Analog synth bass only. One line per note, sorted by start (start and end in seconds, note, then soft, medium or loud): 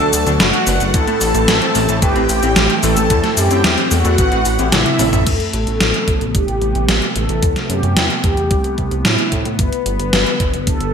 0.00 0.12 D2 medium
0.13 0.25 D2 medium
0.27 0.39 D2 medium
0.40 0.52 F#1 loud
0.67 0.79 F#1 loud
0.81 0.93 F#1 medium
0.94 1.06 A1 loud
1.21 1.33 A1 loud
1.35 1.47 A1 medium
1.48 1.60 A1 medium
1.75 1.87 A1 loud
1.89 2.01 A1 medium
2.02 2.14 G1 loud
2.16 2.28 A1 medium
2.29 2.41 A1 medium
2.43 2.55 A1 medium
2.56 2.68 A1 loud
2.83 2.95 A1 loud
2.97 3.09 A1 medium
3.10 3.22 E2 loud
3.37 3.49 F#2 medium
3.51 3.63 F#2 medium
3.65 3.76 E2 loud
3.91 4.03 E2 loud
4.05 4.17 E2 medium
4.19 4.31 A1 loud
4.32 4.44 A1 medium
4.45 4.58 A1 medium
4.59 4.71 A1 medium
4.72 4.84 A1 loud
4.99 5.12 A1 medium
5.13 5.25 A1 medium
5.27 5.39 A1 loud
5.54 5.66 A1 medium
5.67 5.79 A1 medium
5.81 5.93 A1 medium
6.08 6.20 A1 medium
6.21 6.33 A1 medium
6.35 6.47 G1 loud
6.48 6.60 A1 medium
6.62 6.74 A1 medium
6.75 6.87 A1 medium
6.89 7.01 A1 loud
7.16 7.28 A1 medium
7.29 7.41 A1 medium
7.43 7.55 E2 loud
7.70 7.82 F#2 medium
7.83 7.95 F#2 medium
7.97 8.09 E2 loud
8.24 8.36 E2 loud
8.37 8.49 E2 medium
8.51 8.63 C2 loud
8.65 8.77 C2 medium
8.78 8.90 C2 medium
8.91 9.03 C2 medium
9.05 9.17 A2 loud
9.32 9.44 A2 medium
9.45 9.57 A2 medium
9.59 9.71 G1 loud
9.86 9.98 G1 medium
10.00 10.12 G1 medium
10.13 10.25 G1 loud
10.40 10.52 G1 loud
10.54 10.66 G1 medium
10.67 10.79 D1 loud
10.81 10.93 G1 medium